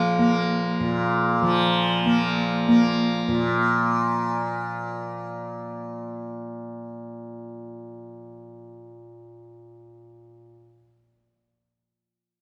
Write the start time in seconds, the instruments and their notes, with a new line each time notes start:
Already playing: tanpura A#2 F3 A#3, tubular bells F4
0.19 tanpura A#3
0.80 tanpura A#2
1.42 tanpura F3
2.06 tanpura A#3
2.68 tanpura A#3
3.28 tanpura A#2